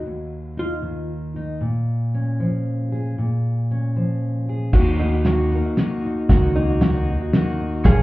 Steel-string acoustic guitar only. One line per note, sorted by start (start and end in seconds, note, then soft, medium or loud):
0.00 0.81 D#3 soft
0.06 1.61 D#2 medium
0.57 1.35 D#4 soft
0.82 1.61 D#3 soft
1.36 1.58 D#4 medium
1.61 3.17 A#2 medium
2.14 3.15 C#4 soft
2.40 3.15 F3 soft
2.92 3.15 G#4 medium
3.18 4.74 A#2 medium
3.71 4.71 C#4 soft
3.96 4.71 F3 soft
4.49 4.71 G#4 soft
4.74 6.29 D#2 medium
4.74 5.25 F#4 medium
5.01 6.58 A#3 soft
5.26 5.77 F#4 soft
5.52 6.04 D#4 medium
5.79 6.27 F#4 soft
6.05 6.27 D#4 soft
6.31 7.86 D#2 medium
6.31 6.83 F#4 medium
6.58 7.84 A#3 medium
6.84 7.35 F#4 medium
7.10 7.59 D#4 medium
7.36 7.84 F#4 medium
7.60 7.83 D#4 medium